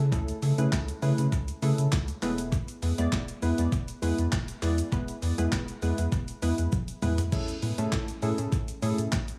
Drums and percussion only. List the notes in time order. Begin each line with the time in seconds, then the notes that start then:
0.12 kick, shaker
0.28 closed hi-hat, shaker
0.42 open hi-hat, shaker
0.58 closed hi-hat, shaker
0.73 kick, snare, clap, shaker
0.88 closed hi-hat, shaker
1.02 open hi-hat, shaker
1.18 closed hi-hat, shaker
1.32 kick, shaker
1.48 closed hi-hat, shaker
1.62 open hi-hat, shaker
1.78 closed hi-hat, shaker
1.92 kick, snare, clap, shaker
2.08 closed hi-hat, shaker
2.22 clap, open hi-hat, shaker
2.38 closed hi-hat, shaker
2.52 kick, shaker
2.68 closed hi-hat, shaker
2.82 open hi-hat, shaker
2.98 closed hi-hat, shaker
3.12 kick, snare, clap, shaker
3.28 closed hi-hat, shaker
3.42 open hi-hat, shaker
3.58 closed hi-hat, shaker
3.72 kick, shaker
3.88 closed hi-hat, shaker
4.03 open hi-hat, shaker
4.18 closed hi-hat, shaker
4.32 kick, snare, clap, shaker
4.48 closed hi-hat, shaker
4.62 clap, open hi-hat, shaker
4.78 closed hi-hat, shaker
4.92 kick, shaker
5.08 closed hi-hat, shaker
5.22 open hi-hat, shaker
5.38 closed hi-hat, shaker
5.52 kick, snare, clap, shaker
5.68 closed hi-hat, shaker
5.82 open hi-hat, shaker
5.98 closed hi-hat, shaker
6.12 kick, shaker
6.28 closed hi-hat, shaker
6.42 open hi-hat, shaker
6.58 closed hi-hat, shaker
6.72 kick, high tom, shaker
6.88 closed hi-hat, shaker
7.02 mid tom, open hi-hat, shaker
7.18 closed hi-hat, floor tom, shaker
7.32 kick, crash, shaker
7.48 closed hi-hat, shaker
7.62 open hi-hat, shaker
7.78 closed hi-hat, shaker
7.92 kick, snare, clap, shaker
8.08 closed hi-hat, shaker
8.22 open hi-hat, shaker
8.38 closed hi-hat, shaker
8.52 kick, shaker
8.68 closed hi-hat, shaker
8.82 open hi-hat, shaker
8.98 closed hi-hat, shaker
9.12 kick, snare, clap, shaker
9.28 closed hi-hat, shaker